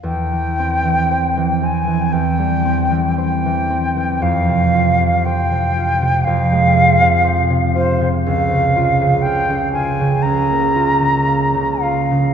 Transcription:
<<
  \new Staff \with { instrumentName = "Flute" } { \time 4/4 \key c \phrygian \tempo 4 = 59 g''4. aes''8 g''4 g''4 | f''4 g''4 f''4. c''8 | f''4 g''8 aes''8 bes''4. f''8 | }
  \new Staff \with { instrumentName = "Harp" } { \clef bass \time 4/4 \key c \phrygian e,16 e16 c'16 e16 c''16 e16 c'16 e16 e,16 g16 c'16 e16 c''16 e16 c'16 e16 | f,16 c16 f'16 c16 c''16 c16 f'16 c16 f,16 aes16 f'16 c16 c''16 c16 f'16 c16 | des,16 des16 f'16 des16 f''16 des16 f'16 des16 des,16 bes16 f'16 des16 f''16 des16 f'16 des16 | }
>>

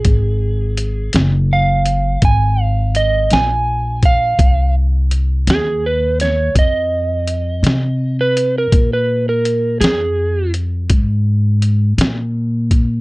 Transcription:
<<
  \new Staff \with { instrumentName = "Electric slide guitar" } { \time 12/8 \key aes \mixolydian \tempo 4. = 55 aes'4. r8 f''4 aes''8 f''8 ees''8 aes''4 f''8~ | f''8 r4 aes'8 ces''8 des''8 ees''2~ ees''16 ces''8 bes'16~ | bes'16 ces''8 bes'8. aes'4 r2. r8 | }
  \new Staff \with { instrumentName = "Upright bass" } { \clef bass \time 12/8 \key aes \mixolydian aes,,4. ges,,4. aes,,4. bes,,4. | c,4. ees,4. f,4. c4. | bes,4. f,4. aes,4. bes,4. | }
  \new DrumStaff \with { instrumentName = "Drums" } \drummode { \time 12/8 <hh bd>4 hh8 <hh sn>4 hh8 <hh bd>4 hh8 <hh sn>4 <hh bd>8 | <hh bd>4 hh8 <hh sn>4 <hh sn>8 <hh bd>4 hh8 <hh sn>4 hh8 | <hh bd>4 hh8 <hh sn>4 hh8 <hh bd>4 hh8 <hh sn>4 <hh bd>8 | }
>>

